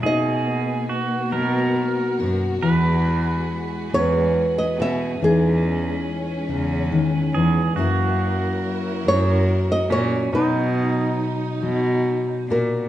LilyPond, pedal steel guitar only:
\new Staff \with { instrumentName = "Pedal steel guitar" } { \time 6/8 \key b \major \tempo 4. = 47 gis'4 fis'8 ais'4 r8 | b'2.~ | b'2~ b'8 gis'8 | fis'2~ fis'8 cis'8 |
dis'2~ dis'8 r8 | }